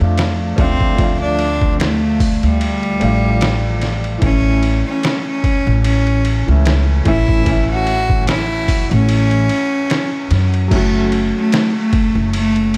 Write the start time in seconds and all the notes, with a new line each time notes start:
0.00 F2 F3 A3 D4 F4
0.18 snare, ride
0.56 D2 F3 A3 C4 D4, kick, ride
0.61 F4
0.81 kick
0.95 F3 A3, kick, ride
1.01 D4 F4
1.21 D4
1.39 ride
1.62 kick
1.80 A3, snare, ride
2.20 kick, open hi-hat
2.43 D2 G3, ride
2.61 ride
2.83 ride
3.00 A1 F3 A3 D4, ride
3.04 F4
3.41 snare, ride
3.81 snare, ride
4.04 ride
4.18 A1 E3 A3, kick, ride
4.24 C#4 E4
4.63 ride
4.87 C#4
5.03 snare, ride
5.27 C#4
5.44 kick, ride
5.67 A1
5.84 C#4, ride
6.07 ride
6.25 ride
6.46 C#2 E3 A3 C#4
6.50 E4
6.65 snare, ride
7.05 A1 E3 A3 C#4 E4, kick, ride
7.28 kick
7.43 E3 A3, kick, ride
7.49 C#4 E4
7.71 F#4
7.87 ride
8.10 kick
8.27 E4, snare, ride
8.68 kick, open hi-hat
8.91 A1 C#4, ride
9.09 ride
9.31 ride
9.49 ride
9.90 snare, ride
10.31 F#2, snare, ride
10.54 ride
10.68 F#1 F#3 A3, kick, crash, ride
10.73 A3 C#4 F#4
11.12 ride
11.38 A3
11.52 snare, ride
11.78 A3
11.93 kick, ride
12.15 F#1
12.33 A3, ride
12.56 ride
12.74 ride